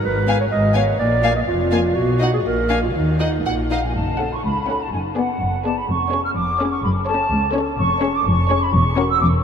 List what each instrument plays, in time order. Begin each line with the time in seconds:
0.03 double bass section G#1, cello section G#2, clarinet B4
0.27 viola section B3, violin section F5 G#5
0.41 clarinet C#5
0.51 double bass section G#1, cello section G#2, clarinet D#5
0.75 viola section B3, clarinet C#5, violin section F5 G#5
0.99 double bass section A#1, cello section A#2, clarinet D5
1.23 viola section A#3, violin section F5 G#5
1.36 clarinet D#5
1.47 double bass section F1, cello section F2, clarinet F4
1.71 viola section A#3, violin section F5 G#5
1.95 double bass section B1, cello section B2, clarinet F#4
2.20 viola section D#4, violin section D#5 F#5
2.34 clarinet G#4
2.45 double bass section A#1, cello section A#2, clarinet A#4
2.69 viola section D4, violin section F5 G#5
2.83 clarinet F4
2.94 double bass section D#2, cello section D#3, clarinet D#4
3.19 viola section D#4, violin section D#5 F#5
3.45 double bass section A#1, cello section A#2, violin section F#5
3.70 viola section D#4, violin section D#5 F5, flute section F#5
3.84 flute section G#5
3.95 double bass section F#1, cello section F#2, flute section A5
4.19 viola section C#4, violin section A4 F#5
4.33 flute section C#6
4.43 double bass section C#2, cello section C#2, flute section B5
4.68 viola section C#4, violin section A4 F#5
4.81 flute section A5
4.92 double bass section F#1, cello section F#2, flute section G#5
5.15 viola section B3, violin section G#4 D5, flute section F#5
5.40 double bass section F#1, cello section F#2
5.63 viola section B3, violin section G#4 D5, flute section A5
5.78 flute section B5
5.87 double bass section F1, cello section F2, flute section C#6
6.11 viola section C#4, violin section G#4 C#5
6.25 flute section F6
6.35 double bass section F1, cello section F2, flute section D6
6.59 viola section C#4, violin section G#4 C#5
6.73 flute section C#6
6.83 double bass section F#1, cello section F#2, flute section B5
7.07 viola section C#4, violin section A4 C#5, flute section A5
7.31 double bass section C#2, cello section C#2
7.53 viola section C#4, violin section A4 C#5
7.78 double bass section F1, cello section F2, flute section C#6
8.02 viola section C#4, violin section G#4 C#5
8.15 flute section D6
8.26 double bass section F1, cello section F2, flute section C#6
8.50 viola section C#4, violin section G#4 C#5
8.63 flute section B5
8.74 double bass section E1, cello section E2, flute section C#6
8.97 viola section C#4, violin section F#4 A#4
9.10 flute section E6
9.21 double bass section E1, cello section E2, flute section D6